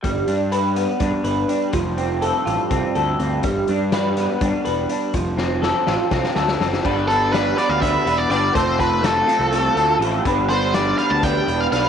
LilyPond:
<<
  \new Staff \with { instrumentName = "Lead electric guitar" } { \time 7/8 \key g \mixolydian \tempo 4 = 123 r2. r8 | r2. r8 | r2. r8 | r2. r8 |
r8 a'8 b'8 d''16 f''16 e''8. d''16 d''8 | c''8 b'8 a'2 r8 | r8 c''8 d''8 f''16 a''16 g''8. f''16 f''8 | }
  \new Staff \with { instrumentName = "Clean electric guitar" } { \time 7/8 \key g \mixolydian g8 d'8 b'8 b8 d'8 b'8 d'8 | f8 c'8 a'8 f'8 c'8 a'8 c'8 | g8 d'8 b'8 b8 d'8 b'8 d'8 | f8 c'8 a'8 f'8 c'8 a'8 c'8 |
<g b d' b'>8 <b d' b'>8 <g b d' b'>8 <g b d' b'>8 <g b d' b'>8 <b d' b'>8 <g b d' b'>8 | <f a c' f' a'>8 <c' f' a'>8 <a c' f' a'>8 <f a c' f' a'>8 <a c' f' a'>8 <c' f' a'>8 <f a c' f' a'>8 | <g b d' b'>8 <b d' b'>8 <g b d' b'>8 <g b d' b'>8 <g b d' b'>8 <b d' b'>8 <g b d' b'>8 | }
  \new Staff \with { instrumentName = "Synth drone" } { \clef bass \time 7/8 \key g \mixolydian <g, g>2.~ <g, g>8~ | <g, g>2.~ <g, g>8~ | <g, g>2.~ <g, g>8~ | <g, g>2.~ <g, g>8 |
r2. r8 | r2. r8 | r2. r8 | }
  \new Staff \with { instrumentName = "Picked electric bass" } { \clef bass \time 7/8 \key g \mixolydian g,,8 g,4. g,16 r16 g,,8 r8 | f,,4. a,,16 r16 c,16 r16 d,8 d,8 | g,,8 g,4. g,16 r16 e,,8 r8 | f,,4. a,,16 r16 c,16 r16 d,8 fis,,8 |
g,,4.~ g,,16 d,8. e,,8 g,,8 | f,,4.~ f,,16 c,8. d,8 a,,8 | g,,4.~ g,,16 d,8. e,,8 b,,8 | }
  \new DrumStaff \with { instrumentName = "Drums" } \drummode { \time 7/8 <hh bd>8 hh8 hh8 hh8 <hh bd>8 hh8 hh8 | <hh bd>8 hh8 hh8 hh8 <hh bd>8 hh8 hh8 | <hh bd>8 hh8 <hh sn>8 <hh sn>8 <hh bd>8 hh8 hh8 | <hh bd>8 sn8 sn8 sn8 <bd sn>16 sn16 sn16 sn16 sn16 sn16 |
<cymc bd>8 hh8 <hh sn>8 <hh sn>8 <hh bd>8 hh8 hh8 | <hh bd>8 <hh bd>8 <hh sn>8 hh8 hh8 hh8 hh8 | <hh bd>8 hh8 <hh sn>8 hh8 <hh bd>8 hh8 hh8 | }
>>